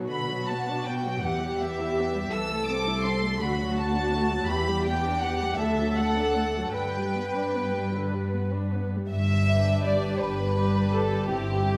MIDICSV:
0, 0, Header, 1, 6, 480
1, 0, Start_track
1, 0, Key_signature, 1, "major"
1, 0, Tempo, 745342
1, 68, Time_signature, 6, 3, 24, 8
1, 1027, Tempo, 723764
1, 3427, Tempo, 747198
1, 3907, Tempo, 787402
1, 5827, Tempo, 725514
1, 7587, End_track
2, 0, Start_track
2, 0, Title_t, "Violin section"
2, 0, Program_c, 0, 48
2, 65, Note_on_c, 0, 83, 49
2, 293, Note_off_c, 0, 83, 0
2, 304, Note_on_c, 0, 81, 51
2, 550, Note_off_c, 0, 81, 0
2, 556, Note_on_c, 0, 79, 50
2, 790, Note_on_c, 0, 78, 51
2, 793, Note_off_c, 0, 79, 0
2, 1025, Note_on_c, 0, 76, 52
2, 1026, Note_off_c, 0, 78, 0
2, 1503, Note_on_c, 0, 88, 57
2, 1505, Note_off_c, 0, 76, 0
2, 1742, Note_on_c, 0, 86, 61
2, 1743, Note_off_c, 0, 88, 0
2, 1980, Note_on_c, 0, 84, 57
2, 1984, Note_off_c, 0, 86, 0
2, 2223, Note_on_c, 0, 83, 55
2, 2225, Note_off_c, 0, 84, 0
2, 2462, Note_on_c, 0, 81, 59
2, 2464, Note_off_c, 0, 83, 0
2, 2941, Note_on_c, 0, 83, 62
2, 2942, Note_off_c, 0, 81, 0
2, 3184, Note_off_c, 0, 83, 0
2, 3187, Note_on_c, 0, 79, 63
2, 3424, Note_off_c, 0, 79, 0
2, 3425, Note_on_c, 0, 78, 64
2, 3654, Note_on_c, 0, 76, 57
2, 3663, Note_off_c, 0, 78, 0
2, 3902, Note_off_c, 0, 76, 0
2, 3909, Note_on_c, 0, 78, 61
2, 4385, Note_on_c, 0, 79, 51
2, 4386, Note_off_c, 0, 78, 0
2, 5092, Note_off_c, 0, 79, 0
2, 6072, Note_on_c, 0, 71, 39
2, 6781, Note_off_c, 0, 71, 0
2, 6795, Note_on_c, 0, 71, 42
2, 7262, Note_off_c, 0, 71, 0
2, 7275, Note_on_c, 0, 67, 40
2, 7505, Note_off_c, 0, 67, 0
2, 7518, Note_on_c, 0, 67, 43
2, 7587, Note_off_c, 0, 67, 0
2, 7587, End_track
3, 0, Start_track
3, 0, Title_t, "Violin section"
3, 0, Program_c, 1, 48
3, 0, Note_on_c, 1, 63, 31
3, 69, Note_off_c, 1, 63, 0
3, 73, Note_on_c, 1, 66, 41
3, 769, Note_off_c, 1, 66, 0
3, 785, Note_on_c, 1, 67, 43
3, 1488, Note_off_c, 1, 67, 0
3, 1504, Note_on_c, 1, 69, 50
3, 2225, Note_on_c, 1, 66, 44
3, 2226, Note_off_c, 1, 69, 0
3, 2943, Note_off_c, 1, 66, 0
3, 2946, Note_on_c, 1, 67, 51
3, 3651, Note_off_c, 1, 67, 0
3, 3660, Note_on_c, 1, 69, 57
3, 4383, Note_on_c, 1, 71, 48
3, 4384, Note_off_c, 1, 69, 0
3, 5466, Note_off_c, 1, 71, 0
3, 5824, Note_on_c, 1, 76, 67
3, 6286, Note_off_c, 1, 76, 0
3, 6316, Note_on_c, 1, 74, 56
3, 6546, Note_on_c, 1, 71, 57
3, 6556, Note_off_c, 1, 74, 0
3, 7030, Note_on_c, 1, 69, 63
3, 7031, Note_off_c, 1, 71, 0
3, 7268, Note_on_c, 1, 67, 60
3, 7269, Note_off_c, 1, 69, 0
3, 7587, Note_off_c, 1, 67, 0
3, 7587, End_track
4, 0, Start_track
4, 0, Title_t, "Viola section"
4, 0, Program_c, 2, 48
4, 0, Note_on_c, 2, 54, 27
4, 0, Note_on_c, 2, 66, 34
4, 66, Note_on_c, 2, 50, 37
4, 67, Note_off_c, 2, 54, 0
4, 181, Note_off_c, 2, 50, 0
4, 191, Note_on_c, 2, 54, 34
4, 312, Note_off_c, 2, 54, 0
4, 315, Note_on_c, 2, 59, 33
4, 435, Note_off_c, 2, 59, 0
4, 439, Note_on_c, 2, 62, 31
4, 557, Note_off_c, 2, 62, 0
4, 557, Note_on_c, 2, 59, 34
4, 675, Note_off_c, 2, 59, 0
4, 678, Note_on_c, 2, 54, 32
4, 766, Note_off_c, 2, 66, 0
4, 794, Note_off_c, 2, 54, 0
4, 795, Note_on_c, 2, 52, 38
4, 795, Note_on_c, 2, 67, 37
4, 903, Note_off_c, 2, 52, 0
4, 910, Note_on_c, 2, 55, 33
4, 1027, Note_off_c, 2, 55, 0
4, 1032, Note_on_c, 2, 59, 35
4, 1150, Note_off_c, 2, 59, 0
4, 1153, Note_on_c, 2, 64, 38
4, 1270, Note_off_c, 2, 64, 0
4, 1271, Note_on_c, 2, 59, 37
4, 1389, Note_off_c, 2, 59, 0
4, 1389, Note_on_c, 2, 55, 36
4, 1507, Note_off_c, 2, 55, 0
4, 1508, Note_off_c, 2, 67, 0
4, 1513, Note_on_c, 2, 52, 38
4, 1515, Note_on_c, 2, 69, 38
4, 1620, Note_off_c, 2, 52, 0
4, 1627, Note_on_c, 2, 57, 40
4, 1745, Note_off_c, 2, 57, 0
4, 1747, Note_on_c, 2, 60, 38
4, 1865, Note_off_c, 2, 60, 0
4, 1867, Note_on_c, 2, 64, 39
4, 1986, Note_on_c, 2, 60, 42
4, 1987, Note_off_c, 2, 64, 0
4, 2103, Note_on_c, 2, 57, 38
4, 2107, Note_off_c, 2, 60, 0
4, 2217, Note_off_c, 2, 69, 0
4, 2225, Note_off_c, 2, 57, 0
4, 2226, Note_on_c, 2, 50, 38
4, 2228, Note_on_c, 2, 66, 43
4, 2338, Note_off_c, 2, 50, 0
4, 2345, Note_on_c, 2, 54, 38
4, 2465, Note_off_c, 2, 54, 0
4, 2472, Note_on_c, 2, 57, 39
4, 2588, Note_off_c, 2, 57, 0
4, 2588, Note_on_c, 2, 62, 43
4, 2706, Note_off_c, 2, 62, 0
4, 2706, Note_on_c, 2, 57, 42
4, 2825, Note_off_c, 2, 57, 0
4, 2832, Note_on_c, 2, 54, 43
4, 2944, Note_off_c, 2, 66, 0
4, 2948, Note_off_c, 2, 54, 0
4, 2951, Note_on_c, 2, 52, 42
4, 2952, Note_on_c, 2, 67, 47
4, 3060, Note_off_c, 2, 52, 0
4, 3070, Note_on_c, 2, 55, 47
4, 3188, Note_off_c, 2, 55, 0
4, 3190, Note_on_c, 2, 59, 43
4, 3309, Note_off_c, 2, 59, 0
4, 3313, Note_on_c, 2, 62, 40
4, 3431, Note_off_c, 2, 62, 0
4, 3435, Note_on_c, 2, 59, 40
4, 3549, Note_off_c, 2, 59, 0
4, 3554, Note_on_c, 2, 55, 42
4, 3668, Note_off_c, 2, 67, 0
4, 3669, Note_off_c, 2, 55, 0
4, 3675, Note_on_c, 2, 50, 42
4, 3675, Note_on_c, 2, 69, 47
4, 3782, Note_off_c, 2, 50, 0
4, 3798, Note_on_c, 2, 54, 41
4, 3913, Note_off_c, 2, 54, 0
4, 3915, Note_on_c, 2, 57, 38
4, 4029, Note_off_c, 2, 57, 0
4, 4033, Note_on_c, 2, 62, 42
4, 4148, Note_off_c, 2, 62, 0
4, 4151, Note_on_c, 2, 57, 42
4, 4268, Note_off_c, 2, 57, 0
4, 4272, Note_on_c, 2, 54, 36
4, 4390, Note_off_c, 2, 54, 0
4, 4391, Note_off_c, 2, 69, 0
4, 4394, Note_on_c, 2, 71, 36
4, 4395, Note_on_c, 2, 50, 38
4, 4504, Note_off_c, 2, 50, 0
4, 4514, Note_on_c, 2, 55, 38
4, 4632, Note_off_c, 2, 55, 0
4, 4637, Note_on_c, 2, 59, 35
4, 4753, Note_off_c, 2, 59, 0
4, 4754, Note_on_c, 2, 62, 34
4, 4869, Note_on_c, 2, 59, 32
4, 4871, Note_off_c, 2, 62, 0
4, 4987, Note_on_c, 2, 55, 33
4, 4988, Note_off_c, 2, 59, 0
4, 5106, Note_off_c, 2, 55, 0
4, 5107, Note_on_c, 2, 50, 38
4, 5226, Note_off_c, 2, 50, 0
4, 5226, Note_on_c, 2, 55, 34
4, 5346, Note_off_c, 2, 55, 0
4, 5351, Note_on_c, 2, 59, 33
4, 5470, Note_off_c, 2, 59, 0
4, 5470, Note_on_c, 2, 62, 34
4, 5592, Note_off_c, 2, 62, 0
4, 5595, Note_on_c, 2, 59, 33
4, 5682, Note_off_c, 2, 71, 0
4, 5714, Note_off_c, 2, 59, 0
4, 5720, Note_on_c, 2, 55, 31
4, 5832, Note_off_c, 2, 55, 0
4, 6078, Note_on_c, 2, 62, 40
4, 6078, Note_on_c, 2, 67, 40
4, 6784, Note_off_c, 2, 62, 0
4, 6784, Note_off_c, 2, 67, 0
4, 6795, Note_on_c, 2, 67, 39
4, 6797, Note_on_c, 2, 62, 35
4, 7262, Note_off_c, 2, 67, 0
4, 7263, Note_off_c, 2, 62, 0
4, 7269, Note_on_c, 2, 64, 39
4, 7270, Note_on_c, 2, 60, 36
4, 7498, Note_off_c, 2, 60, 0
4, 7499, Note_off_c, 2, 64, 0
4, 7506, Note_on_c, 2, 60, 40
4, 7507, Note_on_c, 2, 64, 45
4, 7587, Note_off_c, 2, 60, 0
4, 7587, Note_off_c, 2, 64, 0
4, 7587, End_track
5, 0, Start_track
5, 0, Title_t, "Cello section"
5, 0, Program_c, 3, 48
5, 0, Note_on_c, 3, 47, 40
5, 766, Note_off_c, 3, 47, 0
5, 787, Note_on_c, 3, 40, 42
5, 1502, Note_on_c, 3, 36, 44
5, 1503, Note_off_c, 3, 40, 0
5, 2210, Note_off_c, 3, 36, 0
5, 2224, Note_on_c, 3, 38, 48
5, 2942, Note_off_c, 3, 38, 0
5, 2943, Note_on_c, 3, 40, 56
5, 3649, Note_off_c, 3, 40, 0
5, 3663, Note_on_c, 3, 38, 49
5, 4385, Note_off_c, 3, 38, 0
5, 4388, Note_on_c, 3, 43, 45
5, 5679, Note_off_c, 3, 43, 0
5, 5829, Note_on_c, 3, 43, 55
5, 6470, Note_off_c, 3, 43, 0
5, 6553, Note_on_c, 3, 43, 56
5, 7187, Note_off_c, 3, 43, 0
5, 7273, Note_on_c, 3, 43, 57
5, 7587, Note_off_c, 3, 43, 0
5, 7587, End_track
6, 0, Start_track
6, 0, Title_t, "Double bass section"
6, 0, Program_c, 4, 48
6, 5830, Note_on_c, 4, 31, 50
6, 6471, Note_off_c, 4, 31, 0
6, 6552, Note_on_c, 4, 31, 50
6, 7187, Note_off_c, 4, 31, 0
6, 7273, Note_on_c, 4, 31, 55
6, 7587, Note_off_c, 4, 31, 0
6, 7587, End_track
0, 0, End_of_file